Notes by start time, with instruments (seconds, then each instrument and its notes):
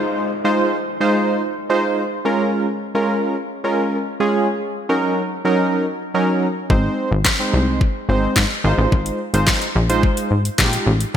Already playing: synth keys G#3 D#4 F4 C5, downlifter
0.44 synth keys G#3 D#4 F4 C5
1.00 synth keys G#3 D#4 F4 C5
1.69 synth keys G#3 D#4 F4 C5
2.25 synth keys G#3 C#4 F4 A#4
2.95 synth keys G#3 C#4 F4 A#4
3.64 synth keys G#3 C#4 F4 A#4
4.20 synth keys G#3 C#4 F4 G#4
4.89 synth keys F#3 C#4 D#4 A#4
5.45 synth keys F#3 C#4 D#4 A#4
6.14 synth keys F#3 C#4 D#4 A#4
6.70 analog synth bass G#1, synth keys G#3 C4 D#4 C5, kick
7.12 analog synth bass G#1
7.25 kick, snare, clap
7.39 synth keys G#3 C4 D#4 C5
7.54 analog synth bass C2
7.81 kick
8.09 analog synth bass G#1, synth keys G#3 C4 D#4 C5
8.36 analog synth bass G#2, kick, snare, clap
8.64 analog synth bass G#1, synth keys G#3 D#4 F4 C5
8.78 analog synth bass A1
8.92 analog synth bass G#1, kick
9.06 closed hi-hat
9.34 analog synth bass G#1, synth keys G#3 D#4 F4 C5, closed hi-hat
9.47 kick, snare, clap
9.62 closed hi-hat
9.76 analog synth bass A#1
9.89 synth keys G#3 D#4 F4 C5, closed hi-hat
10.03 kick
10.17 closed hi-hat
10.31 analog synth bass G#1
10.45 closed hi-hat
10.58 analog synth bass A#1, synth keys G#3 D#4 F4 G4, kick, snare, clap
10.73 closed hi-hat
10.87 analog synth bass A1
11.01 closed hi-hat